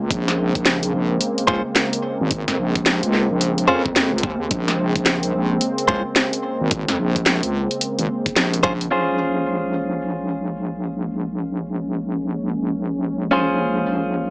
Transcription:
Already playing: C#3 G#3 A#3 C#4
0.10 A#1 C4, kick, closed hi-hat
0.28 snare, closed hi-hat
0.55 A#1, kick, closed hi-hat
0.66 snare, closed hi-hat
0.83 closed hi-hat
0.93 A#1
1.21 closed hi-hat
1.38 closed hi-hat
1.47 C#2 C#4 F4 G#4 C5, kick
1.76 snare, closed hi-hat
1.93 closed hi-hat
2.21 G#1
2.31 kick, closed hi-hat
2.48 F2, snare, closed hi-hat
2.58 A#1
2.75 kick, closed hi-hat
2.86 snare, closed hi-hat
3.03 C#2, closed hi-hat
3.13 snare
3.31 A#1
3.41 closed hi-hat
3.58 closed hi-hat
3.68 F2 C#4 F4 G#4 C5
3.86 kick
3.96 snare, closed hi-hat
4.13 C#2
4.18 closed hi-hat
4.23 D#2, kick
4.51 A#1, kick, closed hi-hat
4.68 snare, closed hi-hat
4.96 A#1, kick, closed hi-hat
5.06 snare, closed hi-hat
5.23 closed hi-hat
5.34 A#1
5.61 closed hi-hat
5.78 closed hi-hat
5.88 C#2 C#4 F4 G#4 C5, kick
6.16 snare, closed hi-hat
6.33 closed hi-hat
6.61 G#1
6.71 kick, closed hi-hat
6.88 F2, snare, closed hi-hat
6.99 A#1
7.16 kick, closed hi-hat
7.26 snare, closed hi-hat
7.43 C#2, closed hi-hat
7.71 closed hi-hat
7.81 closed hi-hat
7.99 G#1, closed hi-hat
8.26 kick, closed hi-hat
8.36 A#1, snare, closed hi-hat
8.54 closed hi-hat
8.63 A#1 C#4 F4 G#4 C5, kick
8.81 closed hi-hat
8.91 A#1 G#3 A#3 C#4 F4 G#4 C5, crash
13.31 C#4 F4 G#4 C5

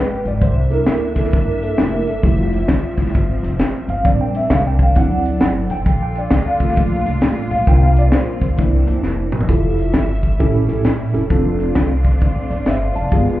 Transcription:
Already playing: G1 G#3 B3 F4 G4 B4
0.25 G#1 D5, closed hi-hat
0.41 C2 G3 A#3 D4 C5 E5, kick, closed hi-hat
0.70 A#3 D4 E4 A4 A#4, closed hi-hat
0.86 D2, snare, closed hi-hat
1.16 A4, kick, snare, closed hi-hat
1.24 snare
1.32 G2 A#4, kick, closed hi-hat
1.63 A4, closed hi-hat
1.78 F1 A3 A#3 D4 E4 G4, snare, closed hi-hat
1.94 A#4
2.07 G1 A4, closed hi-hat
2.23 F1 F3 G3 A3 C4 E4 G4, kick, closed hi-hat
2.40 F4
2.52 closed hi-hat
2.68 A1, kick, snare, closed hi-hat
2.98 G3 A3 E4, kick, snare, closed hi-hat
3.06 snare
3.14 G1, kick, closed hi-hat
3.43 F1, closed hi-hat
3.59 A1, snare, closed hi-hat
3.88 G1 F5, closed hi-hat
4.04 A#1 G3 A#3 C4 D4 D5, kick, closed hi-hat
4.21 G5
4.35 E5, closed hi-hat
4.50 C2 F5, kick, snare, closed hi-hat
4.67 G5
4.79 F5, kick, closed hi-hat
4.95 D2 F#3 C4 E4 A4 F#5, kick, closed hi-hat
5.25 closed hi-hat
5.40 G1, snare, closed hi-hat
5.70 A1 G5, closed hi-hat
5.86 A#1 G3 D4 F4, kick, closed hi-hat
6.03 G5
6.15 D5, closed hi-hat
6.31 D2, kick, snare, closed hi-hat
6.48 F5
6.60 A3 A#3 F4, kick, closed hi-hat
6.68 snare
6.76 A#1, kick, closed hi-hat
7.06 C2, closed hi-hat
7.21 A1, snare, closed hi-hat
7.51 A#1 F5, closed hi-hat
7.67 C2 G3 A#3 C4 D4 F4 G5, kick, closed hi-hat
7.83 F5
7.96 D5, closed hi-hat
8.12 A#1 C5, snare, closed hi-hat
8.41 D2, kick, closed hi-hat
8.57 C2 E3 A#3 D4 E4, kick, closed hi-hat
8.87 F2, closed hi-hat
9.03 F1, snare
9.32 G1, mid tom
9.41 floor tom
9.49 F1 F3 G3 A3 E4 F4 G4 A4 E5, kick, closed hi-hat
9.78 closed hi-hat
9.94 G1, kick, snare, closed hi-hat
10.23 kick, closed hi-hat
10.39 A1 A2 C#4 E4 G4 A4, kick, closed hi-hat
10.68 A#1 C#4 E4 G4 A4, closed hi-hat
10.84 A1, snare, closed hi-hat
11.13 F1 C#4 E4 G4 A4, closed hi-hat
11.30 F1 A3 C4 D4 F4 A4, kick, closed hi-hat
11.60 closed hi-hat
11.75 C2, kick, snare, closed hi-hat
12.05 kick, closed hi-hat
12.20 A1, kick, closed hi-hat
12.50 G1 D5, closed hi-hat
12.66 G1 C5 D5 E5, snare, closed hi-hat
12.96 F1 D5 F5 A5, closed hi-hat
13.11 G1 G2 G3 G#3 B3 F4 G4 G#4, kick, closed hi-hat
13.18 B3

